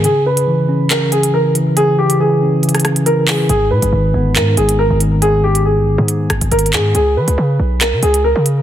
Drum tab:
HH |x-----------------x-----------------------------x-----------x-----x-----------------x-----------|x-----------------x-----------------------------x--x--x--x--x-----x-----x-----------o-----------|x-----------------x-----------------------------x-----------x-----x-----------------x-----------|x-----------------x-----------------------------x-----------x-----x-----x---x---x---x-----------|
CP |------------------------------------------------x-----------------------------------------------|------------------------------------------------------------------------------------x-----------|------------------------------------------------x-----------------------------------------------|------------------------------------------------------------------------------------x-----------|
SD |------------------------------------------------------------------------------------------------|------------------------------------------------------r-----r-----------------------------------|------------------------------------------------------------------------------------------------|------------------------------------------------------------r-----------------------------------|

HH |x-----------------x-----------------------------x-----------x-----x-----------------x-----------|
CP |------------------------------------------------x-----------------------------------------------|
SD |------------------------------------------------------------------------------------------------|